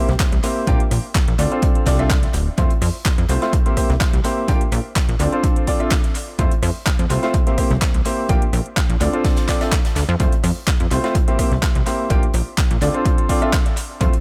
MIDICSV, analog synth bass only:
0, 0, Header, 1, 2, 480
1, 0, Start_track
1, 0, Key_signature, -1, "minor"
1, 0, Tempo, 476190
1, 679, Time_signature, 4, 2, 24, 8
1, 14318, End_track
2, 0, Start_track
2, 0, Title_t, "Analog synth bass"
2, 0, Program_c, 0, 38
2, 87, Note_on_c, 0, 36, 87
2, 155, Note_off_c, 0, 36, 0
2, 326, Note_on_c, 0, 36, 96
2, 394, Note_off_c, 0, 36, 0
2, 679, Note_on_c, 0, 34, 105
2, 756, Note_off_c, 0, 34, 0
2, 919, Note_on_c, 0, 34, 98
2, 996, Note_off_c, 0, 34, 0
2, 1287, Note_on_c, 0, 34, 92
2, 1355, Note_off_c, 0, 34, 0
2, 1399, Note_on_c, 0, 38, 97
2, 1476, Note_off_c, 0, 38, 0
2, 1879, Note_on_c, 0, 36, 98
2, 2288, Note_off_c, 0, 36, 0
2, 2360, Note_on_c, 0, 26, 86
2, 2511, Note_off_c, 0, 26, 0
2, 2599, Note_on_c, 0, 41, 102
2, 2676, Note_off_c, 0, 41, 0
2, 2840, Note_on_c, 0, 41, 101
2, 2917, Note_off_c, 0, 41, 0
2, 3207, Note_on_c, 0, 41, 95
2, 3275, Note_off_c, 0, 41, 0
2, 3319, Note_on_c, 0, 36, 94
2, 3396, Note_off_c, 0, 36, 0
2, 3927, Note_on_c, 0, 36, 85
2, 3995, Note_off_c, 0, 36, 0
2, 4168, Note_on_c, 0, 36, 91
2, 4235, Note_off_c, 0, 36, 0
2, 4520, Note_on_c, 0, 34, 101
2, 4597, Note_off_c, 0, 34, 0
2, 4760, Note_on_c, 0, 34, 104
2, 4837, Note_off_c, 0, 34, 0
2, 5127, Note_on_c, 0, 34, 95
2, 5195, Note_off_c, 0, 34, 0
2, 5240, Note_on_c, 0, 38, 97
2, 5316, Note_off_c, 0, 38, 0
2, 6440, Note_on_c, 0, 41, 101
2, 6517, Note_off_c, 0, 41, 0
2, 6679, Note_on_c, 0, 41, 102
2, 6756, Note_off_c, 0, 41, 0
2, 7047, Note_on_c, 0, 41, 97
2, 7115, Note_off_c, 0, 41, 0
2, 7160, Note_on_c, 0, 36, 94
2, 7237, Note_off_c, 0, 36, 0
2, 7767, Note_on_c, 0, 36, 85
2, 7835, Note_off_c, 0, 36, 0
2, 8008, Note_on_c, 0, 36, 90
2, 8075, Note_off_c, 0, 36, 0
2, 8359, Note_on_c, 0, 34, 102
2, 8436, Note_off_c, 0, 34, 0
2, 8599, Note_on_c, 0, 34, 100
2, 8676, Note_off_c, 0, 34, 0
2, 8967, Note_on_c, 0, 34, 94
2, 9035, Note_off_c, 0, 34, 0
2, 9080, Note_on_c, 0, 38, 91
2, 9157, Note_off_c, 0, 38, 0
2, 10040, Note_on_c, 0, 38, 96
2, 10117, Note_off_c, 0, 38, 0
2, 10168, Note_on_c, 0, 41, 108
2, 10235, Note_off_c, 0, 41, 0
2, 10279, Note_on_c, 0, 41, 106
2, 10357, Note_off_c, 0, 41, 0
2, 10520, Note_on_c, 0, 41, 102
2, 10597, Note_off_c, 0, 41, 0
2, 10888, Note_on_c, 0, 41, 93
2, 10955, Note_off_c, 0, 41, 0
2, 11000, Note_on_c, 0, 36, 92
2, 11077, Note_off_c, 0, 36, 0
2, 11608, Note_on_c, 0, 36, 84
2, 11675, Note_off_c, 0, 36, 0
2, 11848, Note_on_c, 0, 36, 93
2, 11915, Note_off_c, 0, 36, 0
2, 12199, Note_on_c, 0, 34, 103
2, 12276, Note_off_c, 0, 34, 0
2, 12440, Note_on_c, 0, 34, 101
2, 12517, Note_off_c, 0, 34, 0
2, 12808, Note_on_c, 0, 34, 97
2, 12875, Note_off_c, 0, 34, 0
2, 12920, Note_on_c, 0, 38, 94
2, 12997, Note_off_c, 0, 38, 0
2, 14119, Note_on_c, 0, 41, 107
2, 14196, Note_off_c, 0, 41, 0
2, 14318, End_track
0, 0, End_of_file